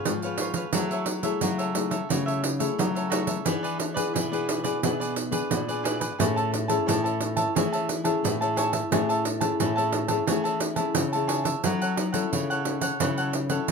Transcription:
Already playing: B3 F4 G#4 B4 C#5 F5
0.05 G#2 F3, pandeiro
0.22 B3 F4 G#4 B4 C#5 F5, pandeiro
0.38 F4 B4 C#5 F5, pandeiro
0.54 B4 C#5 F5, pandeiro
0.73 F#3 A3 E4 F#4 G#4 A4 C#5 E5, pandeiro
0.91 A4 C#5 E5, pandeiro
1.06 muted cavaquinho stroke, pandeiro
1.23 A3 E4 G#4 A4 C#5 E5, pandeiro
1.41 C#3 F#3 F#4 A4 C#5 E5, pandeiro
1.58 A4 C#5 E5, pandeiro
1.75 A3 E4 G#4, pandeiro
1.91 A4 C#5 E5, pandeiro
2.09 C#3 F#3 A3 E4 F#4 G#4 A4 C#5 E5, pandeiro
2.26 A4 C#5 E5, pandeiro
2.42 muted cavaquinho stroke, pandeiro
2.59 A3 E4 G#4 A4 C#5 E5, pandeiro
2.78 C#3 F#3, pandeiro
2.95 A4 C#5 E5, pandeiro
3.10 A3 E4 F#4 G#4 A4 C#5 E5, pandeiro
3.27 A4 C#5 E5, pandeiro
3.45 E3 B3 D4 E4 G#4 B4 D5, pandeiro
3.63 G#4 B4 D5, pandeiro
3.78 muted cavaquinho stroke, pandeiro
3.94 B3 D4 G#4 B4 D5, pandeiro
4.13 B2 E3 E4 G#4 B4 D5, pandeiro
4.32 B3 D4 G#4 B4 D5, pandeiro
4.49 pandeiro
4.64 B3 D4 G#4 B4 D5, pandeiro
4.82 B2 E3 B3 D4 E4 G#4 B4 D5, pandeiro
5.00 G#4 B4 D5, pandeiro
5.16 muted cavaquinho stroke, pandeiro
5.31 B3 D4 G#4 B4 D5, pandeiro
5.51 A#2, pandeiro
5.68 D4 G#4 B4 D5, pandeiro
5.83 E4 G#4 B4 D5, pandeiro
5.99 G#4 B4 D5, pandeiro
6.18 A2 A3 C#4 E4 G#4 C#5 E5 A5, pandeiro
6.36 C#5 E5 A5, pandeiro
6.52 muted cavaquinho stroke, pandeiro
6.68 C#4 E4 G#4 C#5 E5 A5, pandeiro
6.86 A2 E3 G#4 C#5 E5 A5, pandeiro
7.04 C#4 E4 C#5 E5 A5, pandeiro
7.21 pandeiro
7.36 C#5 E5 A5, pandeiro
7.55 E3 A3 C#4 E4 G#4 C#5 E5 A5, pandeiro
7.72 C#5 E5 A5, pandeiro
7.88 muted cavaquinho stroke, pandeiro
8.04 C#4 E4 G#4 C#5 E5 A5, pandeiro
8.22 A2 E3, pandeiro
8.41 C#4 E4 G#4 C#5 E5 A5, pandeiro
8.56 G#4 C#5 E5 A5, pandeiro
8.73 C#5 E5 A5, pandeiro
8.91 A2 A3 C#4 E4 G#4 C#5 E5 A5, pandeiro
9.09 C#5 E5 A5, pandeiro
9.25 muted cavaquinho stroke, pandeiro
9.40 C#4 E4 G#4 C#5 E5 A5, pandeiro
9.59 A2 E3 G#4 C#5 E5 A5, pandeiro
9.76 C#4 E4 G#4 C#5 E5 A5, pandeiro
9.93 pandeiro
10.08 C#4 E4 G#4 C#5 E5 A5, pandeiro
10.27 E3 A3 C#4 E4 G#4 C#5 E5 A5, pandeiro
10.44 C#5 E5 A5, pandeiro
10.60 muted cavaquinho stroke, pandeiro
10.76 C#4 E4 G#4 C#5 E5 A5, pandeiro
10.95 C#3 E3, pandeiro
11.12 C#4 E4 G#4 C#5 E5 A5, pandeiro
11.27 G#4 C#5 E5 A5, pandeiro
11.44 C#5 E5 A5, pandeiro
11.63 F#3 C#4 E4 A4 C#5 F#5, pandeiro
11.82 A4 C#5 F#5, pandeiro
11.96 muted cavaquinho stroke, pandeiro
12.12 C#4 E4 A4 C#5 F#5, pandeiro
12.32 C#3 E4 A4 C#5 F#5, pandeiro
12.50 A4 C#5 F#5, pandeiro
12.65 C#4 E4 A4, pandeiro
12.81 A4 C#5 F#5, pandeiro
13.00 C#3 F#3 C#4 E4 A4 C#5 F#5, pandeiro
13.18 A4 C#5 F#5, pandeiro
13.33 muted cavaquinho stroke, pandeiro
13.50 C#4 E4 A4 C#5 F#5, pandeiro
13.68 C#3, pandeiro

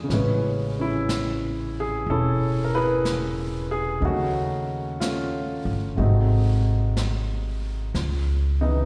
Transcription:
Already playing: D3 F3 F4 G#4
0.04 C#3
0.08 A1 G#3 B3 C#4, brush sweep, snare
0.12 E3 C#4 B4
0.79 C#4 E4
1.09 brush sweep, snare, hi-hat pedal
1.80 G#4
2.06 E1 C#4 A4, brush sweep
2.11 E4
2.64 A#4
2.75 E4 G#4 B4
3.05 brush sweep, snare, hi-hat pedal
3.71 G#4
4.00 D#2 C#3 F#3 A3 D#4, brush sweep
4.05 A3 C#4 F#4
5.00 A3 C#4 F4, brush sweep, snare, hi-hat pedal
5.65 G1
5.96 G#1 C3 G#3 A3 D#4 F#4, brush sweep
6.02 F#3 C4
6.97 brush sweep, snare, hi-hat pedal
7.94 C#2, brush sweep, snare
8.61 C#3 E3 B3 D#4 D#5

